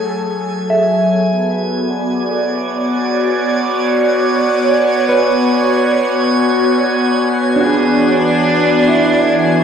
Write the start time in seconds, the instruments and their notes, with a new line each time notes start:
Already playing: analog synth pad F#3 G#4 A4 C#5, synth texture G#5 G#6
0.70 clean electric guitar E5
1.10 analog synth pad B3
1.42 analog synth pad F#4
1.74 analog synth pad D5
2.29 analog synth pad C#5
5.09 clean electric guitar B4
7.56 clean electric guitar D4
7.61 analog synth pad E3, cello D4, clean electric guitar F#4
7.66 clean electric guitar G#4
8.88 clean electric guitar E4
9.03 analog synth pad A4